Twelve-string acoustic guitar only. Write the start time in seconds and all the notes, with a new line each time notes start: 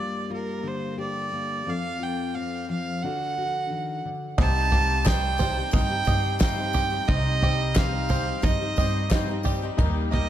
4.38 C3 G3 C4 D#4 G4
4.72 G3 C4 D#4 G4
5.05 C3 G3 C4 D#4 G4
5.39 G3 C4 D#4 G4
5.57 C4 D#4 G4
5.90 C4 D#4 G4
6.06 G3 C4 D#4 G4
6.41 C3 G3 C4 D#4 G4
6.58 C4 D#4 G4
6.91 C4 D#4 G4
7.08 C3 G3 C4 D#4 G4
7.41 G3 C4 D#4 G4
7.75 C3 G3 C4 D#4 G4
8.10 G3 C4 D#4 G4
8.27 C4 D#4 G4
8.61 C4 D#4 G4
8.78 G3 C4 D#4 G4
9.12 C3 G3 C4 D#4 G4
9.28 C4 D#4 G4
9.62 C4 D#4 G4
9.78 D#3 G3 A#3 D#4 G4
10.13 G3 A#3 D#4 G4